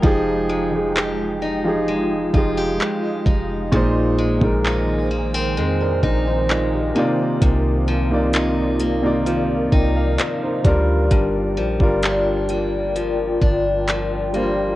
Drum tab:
HH |----------------|----------------|x---x-x-x---x-x-|x---x-x-x---x-x-|
CP |----x-------x---|----x-------x---|----x-------x---|----x-------x---|
BD |o---------o---o-|o--o------o-----|o---------o---o-|o--o------o-----|